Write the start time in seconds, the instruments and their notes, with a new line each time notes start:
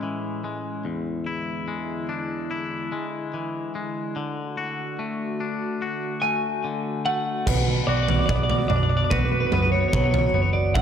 Already playing: analog synth pad A2 G#3 C#4, clean electric guitar G#3 C#4 E4
0.03 clean electric guitar E3
0.44 clean electric guitar G#3
0.85 clean electric guitar E2, analog synth pad D3 E4
1.26 clean electric guitar E4
1.68 clean electric guitar G#3
2.09 clean electric guitar D4
2.51 clean electric guitar E4
2.92 clean electric guitar G#3
3.34 clean electric guitar E3
3.75 clean electric guitar G#3
4.15 clean electric guitar D3, analog synth pad A3 F#4
4.57 clean electric guitar F#4
4.99 clean electric guitar A3
5.40 clean electric guitar D4
5.82 clean electric guitar F#4
6.22 clean electric guitar A3 G#5
6.64 clean electric guitar D3
7.06 clean electric guitar A3 F#5
7.46 picked electric bass B1, clean electric guitar B2, analog synth pad D3 B3 F#4, felt piano B4, kick, floor tom, crash
7.87 picked electric bass B1, clean electric guitar F#4 D5
7.96 clean electric guitar D5
8.03 clean electric guitar D5
8.08 clean electric guitar D5, floor tom
8.19 clean electric guitar D5
8.26 picked electric bass B1, clean electric guitar B3 D5, felt piano D5, kick
8.36 clean electric guitar D5
8.43 clean electric guitar D5
8.50 clean electric guitar D5, floor tom
8.58 clean electric guitar D5
8.68 picked electric bass B1, clean electric guitar D4 D5, felt piano D5, mid tom
8.76 clean electric guitar D5
8.83 clean electric guitar D5
8.90 clean electric guitar D5
8.97 clean electric guitar D5
9.04 clean electric guitar D5
9.10 picked electric bass B1, clean electric guitar F#4 B4, kick, floor tom
9.18 clean electric guitar B4
9.25 clean electric guitar B4
9.32 clean electric guitar B4
9.40 clean electric guitar B4
9.46 clean electric guitar B4
9.52 picked electric bass F#2, clean electric guitar B3 B4, felt piano B4, floor tom
9.62 clean electric guitar B4
9.72 clean electric guitar C#5
9.80 clean electric guitar C#5
9.88 clean electric guitar C#5
9.93 picked electric bass B1, clean electric guitar F#3 C#5, felt piano B4, kick
10.04 clean electric guitar C#5
10.11 clean electric guitar C#5, floor tom
10.19 clean electric guitar C#5
10.26 clean electric guitar C#5
10.33 picked electric bass F#1, clean electric guitar B3 C#5
10.42 clean electric guitar C#5
10.53 clean electric guitar D5
10.74 picked electric bass A1, clean electric guitar A2 F#5, analog synth pad C#3 G#4, felt piano E5, kick, floor tom